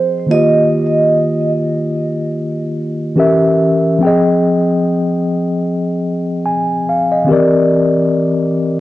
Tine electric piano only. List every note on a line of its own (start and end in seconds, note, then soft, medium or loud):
0.00 0.24 F3 medium
0.00 0.25 C4 medium
0.00 0.27 G#4 medium
0.00 0.28 D#5 medium
0.00 0.26 G5 medium
0.26 3.11 D#3 medium
0.26 3.12 A#3 medium
0.26 3.13 F4 medium
0.32 3.14 G4 medium
0.32 3.15 D#5 medium
3.16 3.98 E3 medium
3.16 3.99 C#4 medium
3.16 3.99 G4 medium
3.16 4.00 A#4 medium
3.16 4.00 E5 medium
3.98 7.23 F3 medium
3.98 7.24 C4 medium
3.98 7.25 G5 medium
4.05 7.26 G#4 medium
4.05 6.45 D#5 medium
6.46 6.85 G#5 medium
6.89 7.11 F5 medium
7.12 7.50 D#5 medium
7.24 7.34 D#3 medium
7.24 8.80 C4 medium
7.29 8.80 E3 medium
7.29 8.80 G4 medium
7.29 8.80 A#4 medium
7.33 8.80 D5 medium